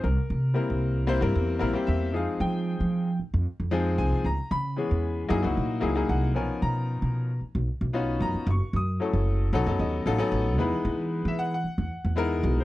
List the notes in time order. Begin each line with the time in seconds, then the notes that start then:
0.04 C2 A#4
0.30 C3
0.54 G3 A#3 C4 E4 A#4
0.70 C2
1.07 G3 A#3 C4 E4 C5
1.21 G2 G3 A#3 C4 E4 A#4
1.35 E2
1.59 A#1 G3 A#3 C4 E4 A#4
1.73 G3 A#3 C4 E4 G4
1.87 E2 E5
2.12 F2 F3 G#3 C4 D#4 G#4 F5
2.40 F3 G5
2.80 F3
3.19 muted upright bass stroke
3.34 F2
3.60 F2
3.71 F3 G#3 C4 D#4 G#4
3.98 C2 G#5
4.12 muted upright bass stroke
4.24 C#2 A#5
4.51 C#3 B5
4.76 E3 G#3 B3 C#4 G#4
4.91 E2
5.28 F#2 F#3 A#3 D#4 E4 G#4
5.42 C#2 F#3 A#3 D#4 E4 F#4
5.57 A#2
5.80 C#2 F#3 A#3 D#4 E4 G#4
5.95 F#3 A#3 D#4 E4 G#4
6.09 C2 F#5
6.34 B1 F3 B3 C#4 D#4 A#4 G#5
6.62 B2 A#5
7.02 B2
7.41 muted upright bass stroke
7.55 B1
7.81 B1
7.93 B3 C#4 D#4 F4 F#4
8.20 F#2 A#5
8.34 muted upright bass stroke
8.47 F#1 C#6
8.73 F#2 D#6
9.00 F#3 A3 C#4 E4 A4
9.13 F#1
9.53 B1 F#3 B3 C#4 D#4 A4
9.66 F#2 F#3 B3 C#4 D#4 A4
9.79 D#2 D#5
10.06 A1 F#3 B3 C#4 D#4 A4 F5
10.18 F#3 B3 C#4 D#4 A4 G#5
10.32 A1
10.57 E2 G#3 B3 D#4 E4 B4
10.85 E3
11.25 E3 E5
11.39 F#5
11.54 F#5
11.64 muted upright bass stroke
11.78 E2
12.05 E2
12.16 G#3 B3 D#4 E4 A#4
12.43 B1
12.58 C5, muted upright bass stroke